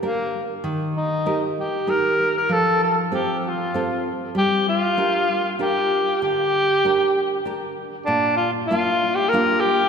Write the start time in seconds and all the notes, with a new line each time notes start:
0.02 A#3 D4 G4 A#4
0.64 D#3
0.97 D#4
1.26 D#4 G4 A#4
1.60 G4
1.87 D#4 G4 A#4
2.37 A#4
2.49 F3 A4
2.84 A4
3.12 C4 F4 G4 A4
3.39 G4
3.48 F4
3.74 C4 F4 A4
4.35 G3 G4
4.69 F4
4.97 D4 G4 A#4
5.59 D4 G4 A#4
6.22 D3 G4
6.85 D4 G4 A#4
7.45 D4 G4 A#4
8.06 A#2 D4
8.37 F4
8.66 F4
8.71 A#3 D4 F4
9.15 G4
9.29 A#4
9.33 A#3 D4 F4
9.60 G4